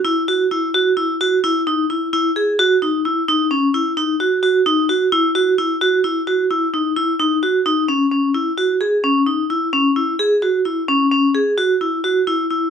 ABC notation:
X:1
M:11/8
L:1/8
Q:1/4=130
K:C#m
V:1 name="Vibraphone"
E F E F E F E D E E G | F D E D C E D F F D F | E F E F E F E D E D F | D C C E F G C D E C E |
G F E C C G F E F E E |]